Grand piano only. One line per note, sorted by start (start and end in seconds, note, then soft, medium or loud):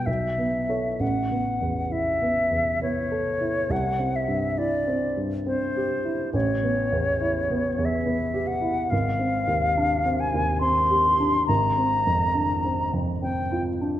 0.00 0.10 G3 soft
0.07 0.98 B1 soft
0.38 0.88 B3 soft
0.69 0.98 A4 soft
0.69 0.98 C#5 soft
1.00 3.67 A1 soft
1.31 1.79 B3 soft
1.61 2.09 E2 soft
1.91 2.40 E4 soft
2.22 2.70 B3 soft
2.51 3.00 E2 soft
2.82 3.30 B3 soft
3.12 3.59 A4 soft
3.41 3.71 E4 soft
3.70 6.30 C2 soft
3.99 4.47 C4 soft
4.28 4.76 G2 soft
4.58 5.06 E4 soft
4.88 5.35 C4 soft
5.17 5.64 G2 soft
5.46 5.93 C4 soft
5.77 6.23 G4 soft
6.05 6.34 E4 soft
6.34 8.87 A1 soft
6.63 7.10 B3 soft
6.92 7.39 E2 soft
7.21 7.67 E4 soft
7.50 7.95 B3 soft
7.78 8.23 E2 soft
8.06 8.51 B3 soft
8.34 8.80 G4 soft
8.61 8.91 E4 soft
8.92 11.45 G#1 soft
9.19 9.66 C4 soft
9.47 9.94 D#2 soft
9.77 10.23 D4 soft
10.06 10.52 C4 soft
10.34 10.80 D#2 soft
10.61 11.08 C4 soft
10.91 11.37 G4 soft
11.20 11.49 D4 soft
11.49 14.00 G#1 soft
11.78 12.24 C4 soft
12.07 12.53 F2 soft
12.35 12.82 D4 soft
12.64 13.11 C4 soft
12.93 13.40 F2 soft
13.22 13.69 C4 soft
13.52 13.99 F4 soft
13.81 14.00 D4 soft